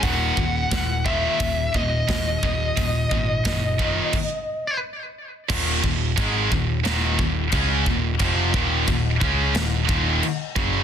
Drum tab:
CC |--------|----x---|x-x-x-x-|x-x-x-x-|
HH |o-o-o-o-|o-o-----|--------|--------|
SD |--o---o-|--o-----|----o---|----o---|
BD |oooooooo|ooooo---|oooo-ooo|oooo-o-o|